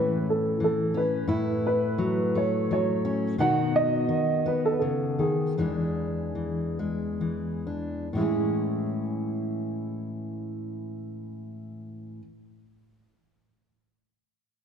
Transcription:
0.00 1.26 A2 medium
0.00 0.59 E3 soft
0.00 0.26 G#3 soft
0.00 0.93 C#4 soft
0.00 0.61 E4 medium
0.00 0.26 B4 medium
0.30 0.63 A4 medium
0.60 1.26 E3 soft
0.64 0.98 A4 medium
0.94 1.25 C#4 medium
0.94 1.65 B4 medium
1.27 3.38 A2 medium
1.27 3.38 E4 medium
1.67 2.38 B4 medium
1.98 2.69 F#3 medium
2.35 3.35 A3 soft
2.35 2.71 C#5 medium
2.71 3.35 F#3 medium
2.71 3.20 C#5 medium
3.05 3.35 C#4 soft
3.38 4.09 B2 medium
3.38 4.07 D#3 soft
3.38 4.45 B3 medium
3.38 5.52 D#4 medium
3.38 5.53 F#4 medium
3.38 3.76 F#5 medium
3.76 4.48 D#5 medium
4.09 5.17 D#3 medium
4.46 5.52 B3 soft
4.46 4.65 B4 medium
4.65 4.72 A4 medium
4.72 4.78 B4 medium
4.79 5.18 C#3 soft
4.79 5.20 A4 medium
5.19 5.56 D#3 soft
5.19 7.63 G#4 medium
5.58 8.14 E2 medium
5.58 6.34 E3 soft
5.58 6.78 G#3 soft
5.58 7.65 D4 soft
6.35 7.20 E3 soft
6.79 8.08 G#3 soft
7.21 8.07 E3 soft
7.67 8.08 D4 soft
8.13 12.20 A2 soft
8.13 12.22 E3 soft
8.13 12.24 G#3 soft
8.13 12.19 E4 medium
8.19 12.26 C#4 soft
8.19 12.28 G#4 soft

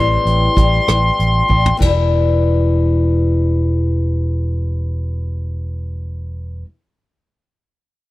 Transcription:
0.00 0.16 A1 medium
0.00 0.56 A2 medium
0.00 0.54 E3 medium
0.00 0.55 G3 medium
0.00 0.56 C4 medium
0.00 0.57 G4 medium
0.00 1.77 C6 loud
0.25 0.47 A1 medium
0.25 closed hi-hat medium
0.56 0.79 A1 medium
0.56 0.87 E3 soft
0.56 0.87 G3 medium
0.56 0.86 C4 medium
0.56 0.85 G4 medium
0.56 kick medium
0.56 closed hi-hat medium
0.87 1.10 A1 medium
0.87 1.50 A2 soft
0.87 1.50 E3 medium
0.87 1.50 G3 medium
0.87 1.49 C4 medium
0.87 1.47 G4 medium
0.87 cross-stick medium
0.87 closed hi-hat medium
1.19 1.41 A1 medium
1.19 closed hi-hat soft
1.48 1.71 A1 medium
1.48 1.80 G3 soft
1.48 1.81 C4 soft
1.48 1.80 G4 medium
1.48 kick medium
1.66 floor tom medium
1.77 6.62 E1 medium
1.77 6.63 E2 medium
1.77 6.64 B2 medium
1.77 6.66 E3 medium
1.77 kick medium
1.82 6.68 G3 medium
1.82 6.69 D4 medium
1.82 6.70 E4 medium
1.82 ride medium

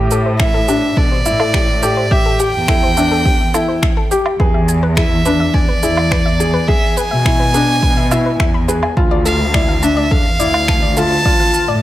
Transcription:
0.00 0.89 A2 loud
0.00 0.20 G4 loud
0.11 0.19 A4 loud
0.11 shaker medium
0.26 0.33 C5 medium
0.40 0.58 E4 medium
0.40 0.48 E5 medium
0.40 0.99 E5 medium
0.40 finger snap medium
0.40 kick loud
0.54 0.66 A4 loud
0.68 1.05 D4 medium
0.68 0.76 G4 loud
0.68 shaker medium
0.97 1.16 B2 medium
0.97 1.05 A4 loud
0.97 2.13 D5 loud
0.97 kick loud
1.12 1.19 C5 medium
1.25 2.32 A2 medium
1.25 1.62 E4 medium
1.25 1.33 E5 medium
1.25 shaker medium
1.40 1.51 A4 loud
1.40 low woodblock medium
1.54 1.62 G4 loud
1.54 finger snap medium
1.54 kick loud
1.83 2.01 G4 medium
1.83 1.90 A4 loud
1.83 shaker medium
1.97 2.05 C5 medium
2.11 2.48 G4 loud
2.11 2.41 E5 loud
2.11 2.19 E5 medium
2.11 kick loud
2.26 2.37 A4 loud
2.40 2.48 G4 loud
2.40 4.11 G5 loud
2.40 shaker medium
2.54 3.75 E2 medium
2.68 2.87 E4 medium
2.68 2.76 A4 loud
2.68 finger snap loud
2.68 kick loud
2.83 2.91 C5 medium
2.97 3.34 D4 medium
2.97 3.05 E5 medium
2.97 shaker medium
3.11 3.23 A4 loud
3.25 3.33 G4 loud
3.25 kick loud
3.54 3.91 E4 medium
3.54 3.62 A4 loud
3.54 low woodblock medium
3.54 shaker medium
3.68 3.76 C5 medium
3.82 3.90 E5 medium
3.82 finger snap medium
3.82 kick loud
3.97 4.08 A4 loud
4.11 4.30 G4 medium
4.11 4.19 G4 loud
4.11 shaker medium
4.26 low woodblock medium
4.40 5.47 E2 loud
4.40 4.77 G#4 loud
4.40 4.48 B4 medium
4.40 kick loud
4.54 4.62 E5 medium
4.68 4.76 G#5 medium
4.68 shaker medium
4.83 4.94 B4 loud
4.97 5.15 E4 medium
4.97 5.05 G#4 loud
4.97 5.55 E5 loud
4.97 finger snap loud
4.97 kick loud
5.25 5.63 D4 medium
5.25 5.33 B4 loud
5.25 shaker medium
5.40 5.48 E5 medium
5.54 5.73 E2 medium
5.54 6.69 D5 loud
5.54 5.62 G#5 medium
5.54 kick loud
5.68 5.80 B4 loud
5.83 6.89 E2 medium
5.83 6.20 E4 medium
5.83 5.90 G#4 loud
5.83 shaker medium
5.97 low woodblock medium
6.11 6.19 B4 loud
6.11 finger snap loud
6.11 kick loud
6.25 6.33 E5 medium
6.40 6.58 G#4 medium
6.40 6.47 G#5 medium
6.40 shaker medium
6.54 6.65 B4 loud
6.67 6.76 G#4 loud
6.67 7.05 G#4 loud
6.67 6.98 E5 loud
6.67 kick loud
6.96 7.05 B4 loud
6.96 8.68 G#5 loud
6.96 shaker medium
7.11 7.81 B2 medium
7.11 7.19 E5 medium
7.25 7.44 E4 medium
7.25 7.33 G#5 medium
7.25 finger snap medium
7.25 kick loud
7.40 7.51 B4 loud
7.54 7.91 D4 medium
7.54 7.62 G#4 loud
7.54 shaker medium
7.83 8.32 B2 loud
7.83 7.90 B4 medium
7.83 kick loud
7.97 8.05 E5 medium
8.11 8.48 E4 medium
8.11 8.19 E6 medium
8.11 low woodblock medium
8.11 shaker medium
8.26 8.30 B4 medium
8.40 8.89 E2 medium
8.40 8.51 E5 loud
8.40 finger snap medium
8.40 kick loud
8.54 8.59 B5 medium
8.68 8.87 G#4 medium
8.68 8.80 B4 loud
8.68 shaker medium
8.83 8.87 G#5 medium
8.83 low woodblock medium
8.97 10.04 D2 loud
8.97 9.34 F4 medium
8.97 9.05 A5 medium
8.97 kick loud
9.11 9.23 D5 loud
9.25 9.33 A4 loud
9.25 9.85 F5 loud
9.25 shaker medium
9.54 9.73 E4 medium
9.54 9.62 D5 loud
9.54 finger snap loud
9.54 kick loud
9.68 9.76 F5 medium
9.83 10.20 D4 medium
9.83 10.13 E5 loud
9.83 9.90 A5 medium
9.83 shaker medium
9.97 10.08 D5 loud
10.11 10.30 E2 medium
10.11 10.19 A4 medium
10.11 10.99 F5 loud
10.11 kick loud
10.40 11.47 D2 medium
10.40 10.77 E4 medium
10.40 10.47 D5 loud
10.40 shaker medium
10.54 10.62 F5 medium
10.54 low woodblock medium
10.68 10.76 A5 medium
10.68 finger snap medium
10.68 kick loud
10.82 10.94 D5 loud
10.97 11.15 F4 medium
10.97 11.05 A4 loud
10.97 11.82 A5 loud
10.97 shaker medium
11.25 11.62 F4 loud
11.25 11.33 D5 loud
11.25 kick loud
11.40 11.47 F5 medium
11.54 11.62 A5 medium
11.54 shaker medium
11.68 11.82 A2 medium
11.68 11.80 D5 loud

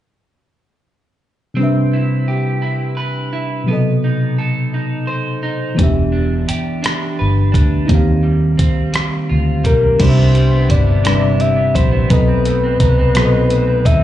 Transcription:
1.54 3.63 C3 soft
1.54 3.64 G3 soft
1.54 3.68 C4 medium
1.59 3.65 D4 soft
1.59 3.66 B4 soft
1.63 3.67 E5 medium
1.93 2.61 E4 soft
2.28 3.75 G4 soft
2.62 3.32 E4 soft
2.97 4.42 B4 medium
3.33 3.75 E4 medium
3.64 5.73 B2 soft
3.64 5.74 F#3 soft
3.68 5.75 C3 soft
3.68 7.18 B3 medium
3.68 5.76 A4 soft
3.73 5.77 D#5 medium
4.04 4.73 D#4 soft
4.39 5.86 A4 soft
4.74 5.42 D#4 medium
5.07 5.85 C5 medium
5.43 5.85 D#4 medium
5.74 7.83 E3 medium
5.74 7.88 E3 medium
5.74 7.84 B3 medium
5.79 6.45 E1 medium
5.79 7.85 D4 soft
5.79 7.86 G4 medium
5.79 kick medium
5.79 closed hi-hat medium
5.83 7.88 E5 medium
6.12 6.81 D4 soft
6.48 9.29 G4 soft
6.48 muted fingered electric bass stroke soft
6.48 closed hi-hat medium
6.83 7.51 D4 medium
6.83 cross-stick medium
6.83 closed hi-hat medium
7.19 7.52 G1 medium
7.19 7.96 B4 medium
7.52 7.86 D2 medium
7.52 7.95 D4 soft
7.52 kick medium
7.52 closed hi-hat medium
7.86 9.99 D#3 medium
7.86 9.95 A#3 soft
7.86 9.94 D#4 medium
7.86 kick medium
7.86 closed hi-hat medium
7.90 8.56 D#2 medium
7.90 9.96 C4 medium
7.90 9.97 G4 soft
7.95 9.98 F5 medium
8.23 8.93 G3 soft
8.57 10.18 C4 soft
8.57 muted fingered electric bass stroke soft
8.57 kick medium
8.57 closed hi-hat medium
8.93 9.64 G3 soft
8.93 cross-stick medium
8.93 closed hi-hat medium
9.29 9.62 D2 medium
9.29 10.00 F4 medium
9.64 9.97 B1 medium
9.64 10.33 G3 soft
9.64 10.03 A#4 medium
9.64 kick medium
9.64 closed hi-hat medium
9.98 10.66 C2 medium
9.98 10.74 C3 medium
9.98 11.02 C3 medium
9.98 10.75 G3 medium
9.98 10.76 D4 medium
9.98 10.68 E4 medium
9.98 10.76 G4 medium
9.98 10.72 C5 medium
9.98 kick medium
9.98 closed hi-hat medium
9.98 crash medium
10.03 10.08 D5 medium
10.09 10.80 E5 medium
10.18 10.51 B3 soft
10.34 11.38 G3 soft
10.34 closed hi-hat soft
10.52 10.87 B3 medium
10.69 11.71 G1 medium
10.69 11.03 E4 medium
10.69 11.42 D5 loud
10.69 kick medium
10.69 closed hi-hat medium
10.87 11.19 B3 medium
11.04 12.17 C3 medium
11.04 11.80 C3 medium
11.04 11.81 G3 medium
11.04 11.81 D4 medium
11.04 11.73 E4 medium
11.04 11.82 B4 medium
11.04 cross-stick medium
11.04 closed hi-hat medium
11.08 11.13 D5 soft
11.15 11.85 E5 medium
11.20 11.56 B3 soft
11.40 12.17 G3 soft
11.40 11.76 E5 medium
11.40 closed hi-hat soft
11.56 11.92 B3 soft
11.74 12.07 A#1 medium
11.74 12.09 E4 medium
11.74 12.10 C5 medium
11.74 kick medium
11.74 closed hi-hat medium
11.92 12.28 B3 soft
12.09 12.77 B1 medium
12.09 13.15 B2 medium
12.09 12.85 B2 medium
12.09 12.86 F#3 medium
12.09 12.86 C4 medium
12.09 12.79 D#4 medium
12.09 12.87 A4 medium
12.09 13.87 B4 loud
12.09 kick loud
12.09 closed hi-hat medium
12.13 12.87 D#5 medium
12.28 12.62 C4 soft
12.45 13.49 A3 soft
12.45 closed hi-hat soft
12.64 12.97 C4 medium
12.80 13.82 C2 medium
12.80 13.16 D#4 medium
12.80 kick medium
12.80 closed hi-hat medium
12.98 13.32 C4 soft
13.15 13.91 B2 medium
13.15 14.04 B2 medium
13.15 13.91 F#3 medium
13.15 13.92 C4 medium
13.15 13.84 D#4 medium
13.15 13.92 A4 medium
13.15 13.24 C5 medium
13.15 cross-stick medium
13.15 closed hi-hat medium
13.25 13.96 D#5 medium
13.33 13.66 C4 soft
13.50 14.04 A3 soft
13.50 closed hi-hat soft
13.67 14.00 C4 soft
13.85 14.04 D#2 medium
13.85 14.04 D#4 medium
13.85 14.04 E5 loud
13.85 kick medium
13.85 closed hi-hat medium

